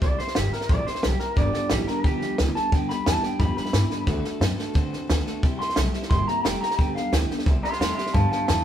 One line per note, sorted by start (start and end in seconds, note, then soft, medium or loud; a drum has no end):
0.02 0.18 C2 loud
0.02 0.19 C3 medium
0.02 0.19 G3 medium
0.02 0.20 C4 medium
0.02 0.19 E4 medium
0.02 0.17 G4 medium
0.02 0.18 D5 loud
0.02 kick loud
0.02 snare soft
0.19 0.35 C4 medium
0.19 0.36 E4 medium
0.19 0.36 G4 medium
0.19 0.35 C5 loud
0.19 muted upright bass stroke medium
0.19 snare soft
0.27 snare soft
0.34 0.53 G1 loud
0.34 0.52 G3 medium
0.34 0.53 C4 medium
0.34 0.53 E4 medium
0.34 0.52 G4 loud
0.34 0.51 G4 medium
0.34 snare loud
0.34 hi-hat pedal medium
0.52 0.69 C4 medium
0.52 0.70 E4 medium
0.52 0.69 G4 medium
0.52 0.69 A#4 medium
0.52 snare soft
0.61 snare soft
0.69 0.86 A1 loud
0.69 0.86 C3 medium
0.69 0.86 G3 medium
0.69 0.87 C4 medium
0.69 0.86 E4 medium
0.69 0.84 G4 medium
0.69 0.86 D5 loud
0.69 kick loud
0.69 snare soft
0.85 1.03 C4 soft
0.85 1.04 E4 soft
0.85 1.02 G4 medium
0.85 1.03 C5 loud
0.85 muted upright bass stroke medium
0.85 snare soft
0.95 snare soft
1.02 1.20 B1 loud
1.02 1.20 G3 medium
1.02 1.20 C4 medium
1.02 1.20 E4 medium
1.02 1.19 G4 medium
1.02 1.18 G4 medium
1.02 snare loud
1.02 hi-hat pedal medium
1.19 1.36 C4 soft
1.19 1.37 E4 medium
1.19 1.37 G4 medium
1.19 1.36 A#4 loud
1.19 snare soft
1.36 1.53 G1 medium
1.36 1.53 G2 medium
1.36 1.67 G2 medium
1.36 1.53 D3 medium
1.36 1.68 D3 loud
1.36 1.54 G3 medium
1.36 1.54 B3 medium
1.36 1.53 D4 medium
1.36 1.51 G4 medium
1.36 1.54 D5 loud
1.36 kick loud
1.36 snare soft
1.53 1.69 G3 soft
1.53 1.70 B3 medium
1.53 1.71 D4 medium
1.53 1.70 G4 medium
1.53 1.71 D5 medium
1.53 muted upright bass stroke medium
1.53 snare soft
1.70 1.87 A1 loud
1.70 1.86 G2 medium
1.70 1.87 E3 loud
1.70 1.87 G3 medium
1.70 1.87 D4 medium
1.70 1.87 G4 loud
1.70 snare loud
1.70 hi-hat pedal medium
1.87 2.03 G2 medium
1.87 2.03 D3 medium
1.87 2.04 G3 soft
1.87 2.04 B3 soft
1.87 2.05 D4 medium
1.87 2.04 G4 medium
1.87 2.04 A#4 loud
1.87 muted upright bass stroke medium
1.87 snare soft
2.04 2.20 B1 medium
2.04 2.21 G2 medium
2.04 2.36 G2 medium
2.04 2.22 D3 medium
2.04 2.36 F3 medium
2.04 2.22 G3 medium
2.04 2.22 B3 medium
2.04 2.21 D4 medium
2.04 2.38 G4 loud
2.04 2.19 G4 medium
2.04 kick loud
2.04 snare soft
2.21 2.37 G3 soft
2.21 2.38 B3 medium
2.21 2.39 D4 soft
2.21 2.38 G4 medium
2.21 muted upright bass stroke soft
2.21 snare soft
2.38 2.55 C#2 loud
2.38 2.54 G2 medium
2.38 2.54 E3 medium
2.38 2.55 G3 medium
2.38 2.56 B3 medium
2.38 2.56 D4 medium
2.38 2.54 G4 medium
2.38 snare loud
2.38 hi-hat pedal medium
2.55 2.71 G2 medium
2.55 2.71 D3 medium
2.55 2.72 G3 soft
2.55 2.73 B3 soft
2.55 2.73 D4 soft
2.55 2.72 G4 medium
2.55 2.72 A5 loud
2.55 snare soft
2.72 2.88 D2 medium
2.72 3.03 G2 medium
2.72 2.89 G2 medium
2.72 2.90 D3 medium
2.72 3.03 D3 loud
2.72 2.90 G3 medium
2.72 2.90 B3 medium
2.72 2.89 D4 medium
2.72 2.88 G4 medium
2.72 2.89 G5 loud
2.72 kick loud
2.72 snare soft
2.89 3.05 G3 medium
2.89 3.06 B3 soft
2.89 3.07 D4 medium
2.89 3.06 G4 medium
2.89 3.06 B5 loud
2.89 snare soft
3.06 3.22 E2 loud
3.06 3.21 G2 medium
3.06 3.22 E3 loud
3.06 3.23 G3 medium
3.06 3.24 B3 medium
3.06 3.23 D4 medium
3.06 3.21 G4 medium
3.06 3.23 A5 loud
3.06 snare loud
3.06 hi-hat pedal loud
3.22 3.38 G2 medium
3.22 3.39 D3 medium
3.22 3.39 G3 soft
3.22 3.40 B3 medium
3.22 3.40 D4 medium
3.22 3.40 G4 medium
3.22 3.40 G5 loud
3.22 muted upright bass stroke medium
3.22 snare soft
3.39 3.56 F2 medium
3.39 3.57 G2 medium
3.39 3.71 G2 loud
3.39 3.57 D3 medium
3.39 3.71 F3 medium
3.39 3.57 G3 medium
3.39 3.57 B3 medium
3.39 3.56 D4 medium
3.39 3.55 G4 medium
3.39 3.56 B5 loud
3.39 kick loud
3.39 snare soft
3.56 3.71 G3 soft
3.56 3.72 B3 soft
3.56 3.73 D4 medium
3.56 3.73 G4 medium
3.56 4.56 B5 loud
3.56 muted upright bass stroke medium
3.56 snare soft
3.65 snare soft
3.72 3.89 G2 loud
3.72 3.89 G2 medium
3.72 3.89 E3 medium
3.72 3.90 G3 medium
3.72 3.90 D4 medium
3.72 3.88 G4 medium
3.72 snare loud
3.72 hi-hat pedal medium
3.90 4.06 G2 medium
3.90 4.06 D3 medium
3.90 4.07 G3 soft
3.90 4.07 B3 soft
3.90 4.07 D4 soft
3.90 4.07 G4 medium
3.90 snare soft
4.06 4.23 D2 medium
4.06 4.24 D3 medium
4.06 4.38 D3 medium
4.06 4.24 A3 medium
4.06 4.39 A3 medium
4.06 4.25 D4 loud
4.06 4.23 F#4 loud
4.06 4.21 A4 medium
4.06 kick loud
4.06 snare soft
4.22 4.40 D4 medium
4.22 4.41 F#4 medium
4.22 4.40 A4 medium
4.22 snare soft
4.40 4.57 F#2 medium
4.40 4.57 D3 medium
4.40 4.58 A3 medium
4.40 4.57 B3 loud
4.40 4.58 D4 medium
4.40 4.57 F#4 medium
4.40 snare loud
4.40 hi-hat pedal medium
4.56 4.74 D3 medium
4.56 4.74 A3 medium
4.56 4.74 D4 soft
4.56 4.75 F#4 medium
4.56 4.74 A4 medium
4.56 snare soft
4.74 4.91 E2 medium
4.74 4.92 D3 medium
4.74 5.06 D3 medium
4.74 4.92 A3 loud
4.74 5.06 C4 loud
4.74 4.92 D4 medium
4.74 4.91 F#4 medium
4.74 4.89 A4 loud
4.74 kick loud
4.74 snare soft
4.90 5.07 D4 medium
4.90 5.09 F#4 medium
4.90 5.08 A4 medium
4.90 snare soft
5.07 5.26 D2 loud
5.07 5.25 D3 medium
5.07 5.25 A3 medium
5.07 5.25 B3 loud
5.07 5.26 D4 medium
5.07 5.26 F#4 medium
5.07 5.24 A4 medium
5.07 snare loud
5.07 hi-hat pedal medium
5.26 5.41 D3 medium
5.26 5.41 A3 medium
5.26 5.44 D4 medium
5.26 5.44 F#4 medium
5.26 5.43 A4 medium
5.26 muted upright bass stroke medium
5.26 snare soft
5.42 5.73 C3 medium
5.42 5.60 C3 medium
5.42 5.73 G3 loud
5.42 5.60 G3 medium
5.42 5.61 C4 medium
5.42 5.60 E4 medium
5.42 5.58 G4 medium
5.42 kick loud
5.42 snare soft
5.59 5.78 E4 medium
5.59 5.77 G4 medium
5.59 5.76 C6 loud
5.59 muted upright bass stroke soft
5.59 snare soft
5.63 5.77 C4 soft
5.69 snare soft
5.76 5.93 B1 loud
5.76 5.92 C3 medium
5.76 5.94 G3 medium
5.76 5.93 A3 medium
5.76 5.94 C4 medium
5.76 5.95 E4 medium
5.76 snare loud
5.76 hi-hat pedal loud
5.81 5.92 G4 medium
5.93 6.10 C3 medium
5.93 6.10 G3 medium
5.93 6.11 C4 medium
5.93 6.12 E4 medium
5.93 6.11 G4 medium
5.93 muted upright bass stroke medium
5.93 snare soft
6.02 snare soft
6.10 6.27 G1 medium
6.10 6.28 C3 medium
6.10 6.42 C3 medium
6.10 6.28 G3 medium
6.10 6.42 A#3 medium
6.10 6.29 C4 medium
6.10 6.28 E4 medium
6.10 6.26 G4 medium
6.10 6.27 C6 loud
6.10 kick loud
6.10 snare soft
6.27 6.44 C4 soft
6.27 6.45 E4 medium
6.27 6.44 G4 medium
6.27 6.44 A#5 loud
6.27 muted upright bass stroke medium
6.27 snare soft
6.44 6.61 E1 loud
6.44 6.60 C3 medium
6.44 6.61 G3 medium
6.44 6.61 A3 medium
6.44 6.62 C4 medium
6.44 6.62 E4 medium
6.44 6.60 G4 medium
6.44 6.61 G5 loud
6.44 snare loud
6.44 hi-hat pedal medium
6.61 6.77 C3 medium
6.61 6.77 G3 medium
6.61 6.79 C4 soft
6.61 6.79 E4 soft
6.61 6.79 G4 medium
6.61 6.78 A#5 loud
6.61 muted upright bass stroke soft
6.61 snare soft
6.71 snare soft
6.78 6.95 G1 medium
6.78 6.95 G2 medium
6.78 7.09 G2 medium
6.78 6.96 D3 medium
6.78 7.09 D3 loud
6.78 6.96 G3 medium
6.78 6.96 B3 medium
6.78 6.95 D4 medium
6.78 6.94 G4 medium
6.78 6.95 G5 medium
6.78 kick loud
6.78 snare soft
6.95 7.10 G3 soft
6.95 7.12 B3 soft
6.95 7.13 D4 medium
6.95 7.13 G4 medium
6.95 7.13 F5 loud
6.95 muted upright bass stroke soft
6.95 snare soft
7.12 7.29 D2 loud
7.12 7.28 G2 medium
7.12 7.28 E3 medium
7.12 7.29 G3 medium
7.12 7.30 B3 medium
7.12 7.29 D4 medium
7.12 7.28 G4 medium
7.12 7.45 G5 loud
7.12 snare loud
7.12 hi-hat pedal loud
7.30 7.45 G2 medium
7.30 7.45 D3 medium
7.30 7.45 G3 medium
7.30 7.47 B3 medium
7.30 7.47 D4 medium
7.30 7.46 G4 medium
7.30 snare soft
7.39 snare soft
7.46 7.62 C2 medium
7.46 7.63 C3 medium
7.46 7.77 C3 medium
7.46 7.63 G3 medium
7.46 7.77 G3 medium
7.46 7.64 C4 medium
7.46 7.63 E4 medium
7.46 7.61 G4 medium
7.46 kick loud
7.46 snare soft
7.63 7.80 C4 soft
7.63 7.80 E4 soft
7.63 7.80 G4 medium
7.63 7.77 E5 loud
7.63 7.78 C6 loud
7.63 muted upright bass stroke medium
7.63 snare soft
7.72 snare soft
7.78 7.96 E2 loud
7.78 7.95 C3 medium
7.78 7.97 G3 medium
7.78 7.96 A3 medium
7.78 7.98 C4 medium
7.78 7.98 E4 medium
7.78 7.94 E5 medium
7.78 7.95 C6 loud
7.78 snare loud
7.78 hi-hat pedal medium
7.83 7.95 G4 medium
7.95 8.12 C3 medium
7.95 8.13 G3 medium
7.95 8.15 E4 soft
7.95 8.14 G4 medium
7.95 8.12 E5 medium
7.95 8.13 C6 medium
7.95 muted upright bass stroke soft
7.95 snare soft
8.00 8.15 C4 soft
8.06 snare soft
8.13 8.31 G2 medium
8.13 8.45 G2 loud
8.13 8.31 G2 loud
8.13 8.31 D3 medium
8.13 8.45 D3 medium
8.13 8.31 G3 medium
8.13 8.32 B3 medium
8.13 8.31 D4 medium
8.13 8.29 G4 medium
8.13 8.29 F5 loud
8.13 8.30 A5 loud
8.13 kick loud
8.13 snare soft
8.30 8.47 G3 soft
8.30 8.48 B3 soft
8.30 8.48 D4 medium
8.30 8.48 G4 medium
8.30 8.46 F5 medium
8.30 8.47 A5 medium
8.30 muted upright bass stroke medium
8.30 snare soft
8.47 8.64 E2 loud
8.47 8.64 G2 medium
8.47 8.64 E3 medium
8.47 8.64 G3 medium
8.47 8.64 B3 medium
8.47 8.63 F5 medium
8.47 8.64 A5 loud
8.47 snare loud
8.47 hi-hat pedal medium
8.52 8.63 G4 medium